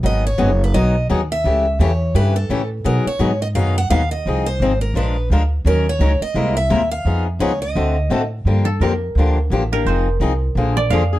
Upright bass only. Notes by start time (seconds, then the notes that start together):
0.03 G#1
0.39 F#1
0.74 B1
1.09 D#2
1.44 C#2
1.79 E2
2.14 G2
2.49 A2
2.85 B2
3.05 muted upright bass stroke
3.19 G#2
3.55 F#2
3.90 D#2
4.26 C2
4.60 G#1
4.94 A#1
5.30 D2
5.65 D#2
5.99 C#2
6.21 muted upright bass stroke
6.34 C2
6.70 D#2
7.05 F2
7.39 C#2
7.75 D2
8.10 A2
8.45 G2
8.80 F2
9.15 D2
9.50 A1
9.85 F1
10.20 C2
10.55 A#1
10.90 F2